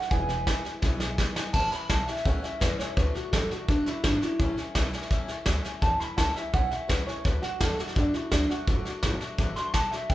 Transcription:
Already playing: steel-string acoustic guitar A3 C#4 E4, clean electric guitar F#5
0.02 snare
0.11 upright bass E1, steel-string acoustic guitar E2 B2 E3 G#3 B3 E4, clean electric guitar G#5, kick, snare
0.29 steel-string acoustic guitar E3 G#3 B3 E4, snare
0.47 steel-string acoustic guitar E3 G#3 B3 E4, kick, snare, hi-hat pedal
0.65 steel-string acoustic guitar E3 G#3 B3 E4, muted upright bass stroke, snare
0.82 upright bass B1, steel-string acoustic guitar E2 B2 E3 G#3 B3 E4, kick, snare
1.00 steel-string acoustic guitar E3 G#3 B3 E4, snare
1.18 steel-string acoustic guitar E3 G#3 B3 E4, kick, snare, hi-hat pedal
1.36 steel-string acoustic guitar E3 G#3 B3 E4, snare
1.53 upright bass A1, steel-string acoustic guitar A2 E3 A3 C#4 E4, clean electric guitar A5, kick, snare, crash
1.72 steel-string acoustic guitar A3 C#4 E4, clean electric guitar B5, muted upright bass stroke, snare
1.89 upright bass B1, steel-string acoustic guitar E3 A3 C#4 E4, clean electric guitar A5, kick, snare, hi-hat pedal
2.06 steel-string acoustic guitar A3 C#4 E4, clean electric guitar E5, muted upright bass stroke, snare
2.16 snare
2.25 upright bass C#2, steel-string acoustic guitar A2 E3 A3 C#4 E4, clean electric guitar F#5, kick, snare
2.42 steel-string acoustic guitar A3 C#4 E4, clean electric guitar E5, snare
2.60 upright bass E2, steel-string acoustic guitar E3 A3 C#4 E4, clean electric guitar B4, kick, snare, hi-hat pedal
2.79 steel-string acoustic guitar A3 C#4 E4, clean electric guitar C#5, muted upright bass stroke, snare
2.96 upright bass D2, steel-string acoustic guitar D3 A3 D4 F#4, clean electric guitar B4, kick, snare
3.14 steel-string acoustic guitar A3 D4 F#4, clean electric guitar F#4, muted upright bass stroke, snare
3.33 upright bass A1, steel-string acoustic guitar D3 A3 D4 F#4, clean electric guitar A4, kick, snare, hi-hat pedal
3.51 steel-string acoustic guitar A3 D4 F#4, clean electric guitar F#4, muted upright bass stroke, snare
3.68 upright bass F#1, steel-string acoustic guitar D3 A3 D4 F#4, clean electric guitar D4, kick, snare
3.86 steel-string acoustic guitar A3 D4 F#4, clean electric guitar E4, muted upright bass stroke, snare
4.04 upright bass G#1, steel-string acoustic guitar D3 A3 D4 F#4, clean electric guitar D4, kick, snare, hi-hat pedal
4.22 steel-string acoustic guitar A3 D4 F#4, clean electric guitar E4, muted upright bass stroke, snare
4.39 upright bass A1, steel-string acoustic guitar A2 E3 A3 C#4 E4, kick, snare
4.57 steel-string acoustic guitar A3 C#4 E4, muted upright bass stroke, snare
4.75 upright bass B1, steel-string acoustic guitar E3 A3 C#4 E4, kick, snare, hi-hat pedal
4.93 steel-string acoustic guitar A3 C#4 E4, muted upright bass stroke, snare
5.02 snare
5.10 upright bass C#2, steel-string acoustic guitar A2 E3 A3 C#4 E4, kick, snare
5.28 steel-string acoustic guitar A3 C#4 E4, muted upright bass stroke, snare
5.46 upright bass D2, steel-string acoustic guitar E3 A3 C#4 E4, kick, snare, hi-hat pedal
5.64 steel-string acoustic guitar A3 C#4 E4, muted upright bass stroke, snare
5.82 upright bass E2, steel-string acoustic guitar A2 E3 A3 C#4 E4, clean electric guitar A5, kick, snare
6.00 steel-string acoustic guitar A3 C#4 E4, clean electric guitar B5, muted upright bass stroke, snare
6.17 upright bass C#2, steel-string acoustic guitar E3 A3 C#4 E4, clean electric guitar A5, kick, snare, hi-hat pedal
6.35 steel-string acoustic guitar A3 C#4 E4, clean electric guitar E5, snare
6.53 upright bass B1, steel-string acoustic guitar A2 E3 A3 C#4 E4, clean electric guitar F#5, kick, snare
6.71 steel-string acoustic guitar A3 C#4 E4, clean electric guitar E5, muted upright bass stroke, snare
6.88 upright bass C#2, steel-string acoustic guitar E3 A3 C#4 E4, clean electric guitar B4, kick, snare, hi-hat pedal
7.06 steel-string acoustic guitar A3 C#4 E4, clean electric guitar C#5, muted upright bass stroke, snare
7.24 upright bass D2, steel-string acoustic guitar D3 A3 D4 F#4, clean electric guitar B4, kick, snare
7.42 steel-string acoustic guitar A3 D4 F#4, clean electric guitar F#4, muted upright bass stroke, snare
7.60 upright bass E2, steel-string acoustic guitar D3 A3 D4 F#4, clean electric guitar A4, kick, snare, hi-hat pedal
7.78 steel-string acoustic guitar A3 D4 F#4, clean electric guitar F#4, muted upright bass stroke, snare
7.87 snare
7.95 upright bass F#2, steel-string acoustic guitar D3 A3 D4 F#4, clean electric guitar D4, kick, snare
8.14 steel-string acoustic guitar A3 D4 F#4, clean electric guitar E4, muted upright bass stroke, snare
8.31 upright bass D2, steel-string acoustic guitar D3 A3 D4 F#4, clean electric guitar D4, kick, snare, hi-hat pedal
8.49 steel-string acoustic guitar A3 D4 F#4, clean electric guitar F#4, snare
8.67 upright bass F#1, steel-string acoustic guitar D3 A3 D4 F#4, kick, snare
8.85 steel-string acoustic guitar A3 D4 F#4, muted upright bass stroke, snare
9.03 upright bass G#1, steel-string acoustic guitar D3 A3 D4 F#4, kick, snare, hi-hat pedal
9.20 steel-string acoustic guitar A3 D4 F#4, muted upright bass stroke, snare
9.38 upright bass A1, steel-string acoustic guitar D3 A3 D4 F#4, kick, snare
9.56 steel-string acoustic guitar A3 D4 F#4, clean electric guitar C6, muted upright bass stroke, snare
9.74 upright bass B1, steel-string acoustic guitar D3 A3 D4 F#4, clean electric guitar A5, kick, snare, hi-hat pedal
9.91 steel-string acoustic guitar A3 D4 F#4, clean electric guitar E5, muted upright bass stroke, snare
10.10 upright bass A1, steel-string acoustic guitar A2 E3 A3 C#4 E4, clean electric guitar G5, kick, snare

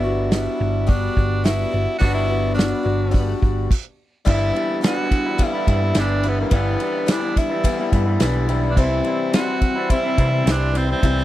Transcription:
Already playing: picked electric bass G1, clean electric guitar G3 B3 D4 F#4, tenor saxophone E4, tonewheel organ F#5 B5
0.03 steel-string acoustic guitar B3 D4 F#4
0.31 steel-string acoustic guitar G3 B3 D4 F#4, tenor saxophone E4, snare, open hi-hat
0.61 picked electric bass G1
0.87 steel-string acoustic guitar G3 B3 D4 F#4, tenor saxophone D4, kick, open hi-hat
1.17 picked electric bass G1, kick
1.44 steel-string acoustic guitar G3 B3 D4 F#4, tenor saxophone E4, snare, open hi-hat
1.71 picked electric bass G1, steel-string acoustic guitar B3 D4 F#4
1.98 picked electric bass G1, clean electric guitar G3 B3, tenor saxophone F#4, tonewheel organ F#5, kick, open hi-hat
2.03 clean electric guitar D4 F#4
2.14 tenor saxophone E4
2.28 steel-string acoustic guitar B3 D4 F#4
2.54 steel-string acoustic guitar G3 B3 D4 F#4, tenor saxophone D4, open hi-hat
2.59 snare
2.83 picked electric bass G1, steel-string acoustic guitar B3 D4 F#4
3.11 steel-string acoustic guitar G3 B3 D4 F#4, kick, open hi-hat
3.43 picked electric bass G1, kick
3.71 kick, crash
4.26 picked electric bass G1, clean electric guitar G2 D3 E3 G3 B3 E4, tonewheel organ G3 E5 B5, tenor saxophone E4, kick, crash
4.54 clean electric guitar E3 G3 B3 E4, ride
4.82 clean electric guitar G2 D3 E3 G3 B3 E4, snare, ride
4.86 tenor saxophone F#4
4.96 clean electric guitar E3 G3 B3 E4
5.11 muted clean electric guitar stroke, kick, ride
5.26 clean electric guitar E3 G3 B3 E4
5.38 steel-string acoustic guitar G2 D3 E3 G3 B3 E4, kick, ride
5.44 tenor saxophone E4
5.53 clean electric guitar E3 G3 B3 E4
5.67 picked electric bass G2, clean electric guitar E3 G3 B3 E4, kick, ride
5.82 clean electric guitar E3 G3 B3 E4
5.95 picked electric bass G1, clean electric guitar G2 D3 E3 G3, snare, ride
5.99 clean electric guitar B3 E4, tenor saxophone D4
6.23 clean electric guitar E3 G3 B3, ride
6.28 tenor saxophone B3, clean electric guitar E4
6.39 clean electric guitar E3 G3 B3 E4, tenor saxophone B3
6.51 picked electric bass G1, clean electric guitar G2 D3 E3 G3, tonewheel organ D5, kick, ride
6.55 clean electric guitar B3 E4
6.80 clean electric guitar E3 G3 B3, ride
6.84 clean electric guitar E4
7.08 clean electric guitar G2 D3 E3 G3 B3, tenor saxophone D4, steel-string acoustic guitar E4, snare, ride
7.12 clean electric guitar E4
7.23 clean electric guitar E3 G3 B3 E4
7.36 tenor saxophone E4, muted clean electric guitar stroke, kick, snare, ride
7.49 clean electric guitar E3 G3 B3 E4
7.64 steel-string acoustic guitar G2 D3 E3 G3 B3 E4, kick, ride
7.78 clean electric guitar E3 G3 B3 E4
7.92 picked electric bass G2, clean electric guitar E3 G3 B3 E4, kick, ride
8.05 clean electric guitar E3 G3 B3 E4
8.20 picked electric bass B1, clean electric guitar G2 D3 E3 G3 B3 E4, snare, ride
8.47 clean electric guitar E3 G3 B3 E4, ride
8.61 clean electric guitar E3 G3 B3 E4
8.71 tenor saxophone D4
8.75 picked electric bass C2, clean electric guitar C3 E3 G3 C4 E4, tenor saxophone E4, tonewheel organ E5 C6, kick, crash
9.04 clean electric guitar E3 G3 C4 E4, ride
9.32 clean electric guitar C3 E3 G3 C4 E4, tenor saxophone F#4, snare, ride
9.46 clean electric guitar G3 C4 E4
9.61 muted clean electric guitar stroke, kick, ride
9.75 clean electric guitar G3 C4 E4
9.90 steel-string acoustic guitar C3 E3 G3 C4 E4, tenor saxophone E4, kick, ride
10.03 clean electric guitar G3 C4 E4
10.17 picked electric bass C3, clean electric guitar E3 G3 C4 E4, kick, ride
10.31 clean electric guitar G3 C4 E4
10.44 picked electric bass C2, clean electric guitar C3 E3 G3 C4 E4, snare, ride
10.51 tenor saxophone D4
10.72 clean electric guitar E3 G3 C4 E4, ride
10.78 tenor saxophone C4
10.86 clean electric guitar G3 C4 E4
10.92 tenor saxophone C4
11.00 picked electric bass C2, clean electric guitar C3 E3 G3 C4 E4, kick, ride
11.04 steel-string acoustic guitar C3
11.18 snare

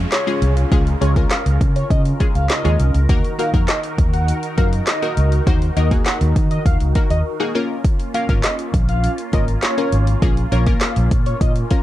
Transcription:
Already playing: supersaw synth C#3 C#4 F4 G#4, synth stab G#3 C#4 F4 G#4, downlifter
0.12 analog synth lead C#5, snare, clap, closed hi-hat
0.27 synth stab G#3 C#4 F4 G#4, closed hi-hat
0.42 fingered electric bass C2, closed hi-hat
0.57 closed hi-hat
0.72 fingered electric bass C#2, synth stab G#3 C#4 F4 G#4, supersaw synth A#4, kick, closed hi-hat
0.87 closed hi-hat
1.01 fingered electric bass C#2, synth stab G#3 C#4 F4 G#4, analog synth lead C#5, closed hi-hat
1.16 synth stab G#3 C#4 F4 A#4, kick, closed hi-hat
1.31 analog synth lead F5, snare, clap, closed hi-hat
1.46 fingered electric bass C#2, closed hi-hat
1.61 fingered electric bass C#3, kick, closed hi-hat
1.76 analog synth lead C#5, closed hi-hat
1.90 fingered electric bass C#3, analog synth lead D#5, kick, closed hi-hat
2.05 closed hi-hat
2.20 synth stab G#3 C#4 F4 G#4, kick, closed hi-hat
2.35 fingered electric bass C#2, analog synth lead F5, closed hi-hat
2.50 analog synth lead D#5, snare, clap, closed hi-hat
2.65 fingered electric bass D#2, synth stab G#3 C#4 F4 G#4, closed hi-hat
2.80 fingered electric bass C2, closed hi-hat
2.94 fingered electric bass C#2, closed hi-hat
3.09 fingered electric bass D#2, supersaw synth D#3 D#4 F#4, synth stab A#3 D#4 F#4 A#4, kick, closed hi-hat
3.24 closed hi-hat
3.39 synth stab A#3 D#4 F#4 A#4, analog synth lead F5, closed hi-hat
3.54 fingered electric bass F2, synth stab A#3 D#4 F#4 A#4, kick, closed hi-hat
3.68 analog synth lead D#5, snare, clap, closed hi-hat
3.83 closed hi-hat
3.98 fingered electric bass D#2, kick, closed hi-hat
4.13 analog synth lead F#5, closed hi-hat
4.28 closed hi-hat
4.43 closed hi-hat
4.57 fingered electric bass F#2, synth stab A#3 D#4 F#4 A#4, analog synth lead F5, kick, closed hi-hat
4.73 closed hi-hat
4.87 analog synth lead D#5, snare, clap, closed hi-hat
5.02 synth stab A#3 D#4 F#4 A#4, closed hi-hat
5.17 fingered electric bass C#2, closed hi-hat
5.32 closed hi-hat
5.47 fingered electric bass D#2, synth stab A#3 D#4 F#4 C5, kick, closed hi-hat
5.62 closed hi-hat
5.76 fingered electric bass D#2, synth stab A#3 D#4 F#4 A#4, analog synth lead D#5, closed hi-hat
5.91 synth stab A#3 D#4 F#4 G#4, kick, closed hi-hat
6.06 analog synth lead F#5, snare, clap, closed hi-hat
6.21 fingered electric bass D#2, closed hi-hat
6.36 fingered electric bass D#3, kick, closed hi-hat
6.51 analog synth lead D#5, closed hi-hat
6.66 fingered electric bass D#2, analog synth lead F5, kick, closed hi-hat
6.80 fingered electric bass C#2, closed hi-hat
6.95 synth stab A#3 D#4 F#4 A#4, kick, closed hi-hat
7.10 fingered electric bass D#2, analog synth lead D#5, closed hi-hat
7.40 synth stab A#3 D#4 F#4 G#4
7.55 synth stab A#3 C#4 F4 A#4, supersaw synth A#3 C#4 F4
7.84 kick, closed hi-hat
8.00 closed hi-hat
8.14 synth stab A#3 C#4 F4 A#4, analog synth lead F5, closed hi-hat
8.29 fingered electric bass G#1, synth stab A#3 C#4 F4 A#4, kick, closed hi-hat
8.44 analog synth lead D#5, snare, clap, closed hi-hat
8.59 closed hi-hat
8.74 fingered electric bass A#1, kick, closed hi-hat
8.89 analog synth lead F5, closed hi-hat
9.04 closed hi-hat
9.18 closed hi-hat
9.33 fingered electric bass G#1, synth stab A#3 C#4 F4 A#4, analog synth lead D#5, kick, closed hi-hat
9.48 closed hi-hat
9.63 analog synth lead C#5, snare, clap, closed hi-hat
9.78 synth stab A#3 C#4 F4 A#4, closed hi-hat
9.92 fingered electric bass G#1, closed hi-hat
10.07 closed hi-hat
10.22 fingered electric bass A#1, synth stab A#3 C#4 F4 G#4, kick, closed hi-hat
10.37 closed hi-hat
10.52 fingered electric bass A#1, synth stab A#3 C#4 F4 A#4, analog synth lead C#5, closed hi-hat
10.66 synth stab A#3 C#4 F4 A#4, kick, closed hi-hat
10.81 analog synth lead F5, snare, clap, closed hi-hat
10.96 fingered electric bass A#1, closed hi-hat
11.11 fingered electric bass A#2, kick, closed hi-hat
11.26 analog synth lead C#5, closed hi-hat
11.41 fingered electric bass A#2, analog synth lead D#5, kick, closed hi-hat
11.56 closed hi-hat
11.71 synth stab A#3 C#4 F4 A#4, kick, closed hi-hat

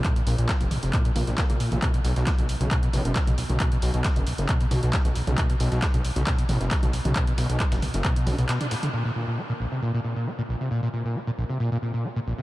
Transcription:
0.04 acid bass A#2, kick, clap, closed hi-hat
0.16 acid bass A#2, closed hi-hat
0.27 detuned saw bass A#1, acid bass A#2, closed hi-hat, open hi-hat
0.38 detuned saw bass A#1, acid bass A#2, closed hi-hat
0.49 acid bass A#3, kick, snare, clap, closed hi-hat
0.61 detuned saw bass F1, acid bass A#2, closed hi-hat
0.71 acid bass A#1, closed hi-hat, mid tom, open hi-hat
0.83 detuned saw bass F1, acid bass C3, snare, closed hi-hat
0.93 acid bass A#2, kick, clap, closed hi-hat
1.05 acid bass A#2, closed hi-hat
1.16 detuned saw bass A#1, acid bass A#3, snare, closed hi-hat, mid tom, open hi-hat
1.27 detuned saw bass A#1, acid bass A#2, snare, closed hi-hat
1.38 acid bass A#3, kick, snare, clap, closed hi-hat
1.50 detuned saw bass A#1, acid bass A#3, closed hi-hat, mid tom
1.60 acid bass A#2, open hi-hat
1.72 detuned saw bass A#1, acid bass A#2, closed hi-hat, mid tom
1.82 acid bass B2, kick, clap, closed hi-hat
1.94 acid bass B2, closed hi-hat
2.05 detuned saw bass B1, acid bass B2, closed hi-hat, open hi-hat
2.16 detuned saw bass B1, acid bass B2, snare, closed hi-hat
2.27 acid bass B3, kick, snare, clap, closed hi-hat
2.38 detuned saw bass B1, acid bass B2, closed hi-hat
2.49 acid bass B1, closed hi-hat, open hi-hat
2.61 detuned saw bass B1, acid bass C#3, closed hi-hat
2.71 acid bass B2, kick, clap, closed hi-hat
2.83 acid bass B2, closed hi-hat
2.93 detuned saw bass A1, acid bass B2, closed hi-hat, mid tom, open hi-hat
3.05 detuned saw bass F#1, acid bass B2, closed hi-hat
3.16 acid bass B3, kick, snare, clap, closed hi-hat
3.27 detuned saw bass B1, acid bass B2, closed hi-hat, mid tom
3.38 acid bass B1, snare, closed hi-hat, open hi-hat
3.50 detuned saw bass B1, acid bass C#3, closed hi-hat, mid tom
3.60 acid bass B2, kick, clap, closed hi-hat
3.72 acid bass B2, closed hi-hat
3.82 detuned saw bass B1, acid bass B2, closed hi-hat, open hi-hat
3.94 detuned saw bass B1, acid bass B2, closed hi-hat
4.04 acid bass B3, kick, snare, clap, closed hi-hat
4.16 detuned saw bass F#1, acid bass B2, closed hi-hat
4.27 acid bass B1, closed hi-hat, open hi-hat
4.38 detuned saw bass F#1, acid bass C#3, snare, closed hi-hat
4.49 acid bass B2, kick, clap, closed hi-hat
4.61 acid bass B2, closed hi-hat
4.71 detuned saw bass B1, acid bass B2, snare, closed hi-hat, mid tom, open hi-hat
4.83 detuned saw bass B1, acid bass B2, snare, closed hi-hat
4.93 acid bass B3, kick, snare, clap, closed hi-hat
5.05 detuned saw bass B1, acid bass B2, closed hi-hat, mid tom
5.16 acid bass B1, open hi-hat
5.27 detuned saw bass B1, acid bass C#3, closed hi-hat, mid tom
5.38 acid bass B2, kick, clap, closed hi-hat
5.50 acid bass B2, closed hi-hat
5.60 detuned saw bass B1, acid bass B2, closed hi-hat, open hi-hat
5.72 detuned saw bass B1, acid bass B2, snare, closed hi-hat
5.82 acid bass B3, kick, snare, clap, closed hi-hat
5.94 detuned saw bass B1, acid bass B2, closed hi-hat
6.05 acid bass B1, closed hi-hat, open hi-hat
6.16 detuned saw bass B1, acid bass C#3, snare, closed hi-hat
6.27 acid bass B2, kick, snare, clap, closed hi-hat
6.38 acid bass B2, closed hi-hat
6.49 detuned saw bass A1, acid bass B2, closed hi-hat, mid tom, open hi-hat
6.61 detuned saw bass F#1, acid bass B2, snare, closed hi-hat
6.71 acid bass B3, kick, snare, clap, closed hi-hat
6.83 detuned saw bass B1, acid bass B2, closed hi-hat, mid tom
6.93 acid bass B1, snare, closed hi-hat, open hi-hat
7.05 detuned saw bass B1, acid bass C#3, closed hi-hat, mid tom
7.16 acid bass B2, kick, clap, closed hi-hat
7.27 acid bass B2, closed hi-hat
7.38 detuned saw bass B1, acid bass B2, snare, closed hi-hat, open hi-hat
7.50 detuned saw bass B1, acid bass B2, closed hi-hat
7.60 acid bass B3, kick, snare, clap, closed hi-hat
7.72 detuned saw bass F#1, acid bass B2, snare, closed hi-hat
7.82 acid bass B1, closed hi-hat, mid tom, open hi-hat
7.94 detuned saw bass F#1, acid bass C#3, snare, closed hi-hat
8.05 acid bass B2, kick, clap, closed hi-hat
8.16 acid bass B2, closed hi-hat
8.27 detuned saw bass B1, acid bass D4, snare, closed hi-hat, mid tom, open hi-hat
8.38 detuned saw bass B1, acid bass B2, snare, closed hi-hat
8.49 acid bass B2, snare, clap, closed hi-hat
8.61 acid bass D4, closed hi-hat, mid tom
8.71 acid bass A2, snare, closed hi-hat, open hi-hat
8.83 acid bass D3, closed hi-hat, mid tom
8.93 acid bass A#2
9.05 acid bass A#2
9.16 acid bass A#2
9.27 acid bass A#2
9.38 acid bass A#3
9.49 acid bass A#2
9.60 acid bass A#1
9.72 acid bass C3
9.82 acid bass A#2
9.94 acid bass A#2
10.04 acid bass A#2
10.16 acid bass A#2
10.27 acid bass A#3
10.38 acid bass A#2
10.49 acid bass A#1
10.61 acid bass C3
10.71 acid bass A#2
10.83 acid bass A#2
10.93 acid bass A#2
11.05 acid bass A#2
11.15 acid bass A#3
11.27 acid bass A#2
11.38 acid bass A#1
11.49 acid bass C3
11.60 acid bass A#2
11.72 acid bass A#2
11.82 acid bass A#2
11.94 acid bass A#2
12.04 acid bass A#3
12.16 acid bass A#2
12.27 acid bass A#1
12.38 acid bass C3

